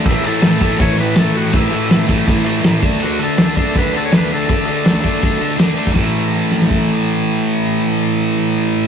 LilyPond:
<<
  \new Staff \with { instrumentName = "Transistor combo organ" } { \time 4/4 \key d \major \tempo 4 = 162 e'8 a'4 a'8 cis''8 b'8 a'8 fis'8 | e'4. r2 r8 | fis'8 a'4 a'8 b'8 a'16 cis''16 b'8 a'8~ | a'2. r4 |
r1 | r1 | }
  \new Staff \with { instrumentName = "Distorted electric guitar" } { \time 4/4 \key d \major <a, e a>8 <e a>8 <a, e a>8 <a, e a>8 <a, e a>8 <e a>8 <a, e a>8 <e a>8 | <a, e a>8 <e a>8 <a, e a>8 <a, e a>8 <a, e a>8 <e a>8 <a, e a>8 <d a d'>8 | <d a d'>8 <a d'>8 <d a d'>8 <d a d'>8 <d a d'>8 <a d'>8 <d a d'>8 <a d'>8 | <d a d'>8 <a d'>8 <d a d'>8 <d a d'>8 <d a d'>8 <a d'>8 <d a d'>8 <a d'>8 |
<a, e a>1~ | <a, e a>1 | }
  \new DrumStaff \with { instrumentName = "Drums" } \drummode { \time 4/4 <cymc bd>8 cymr8 <cymr sn>8 <bd cymr>8 <bd cymr>8 cymr8 <cymr sn>8 cymr8 | <bd cymr>8 cymr8 <cymr sn>8 <bd cymr>8 <bd cymr>8 cymr8 <cymr sn>8 <bd cymr>8 | cymr8 cymr8 <cymr sn>8 <bd cymr>8 <bd cymr>8 cymr8 <cymr sn>8 cymr8 | <bd cymr>8 cymr8 <cymr sn>8 <bd cymr>8 <bd cymr>8 cymr8 <cymr sn>8 cymr16 bd16 |
<cymc bd>4 r8 sn16 sn16 bd4 r4 | r4 r4 r4 r4 | }
>>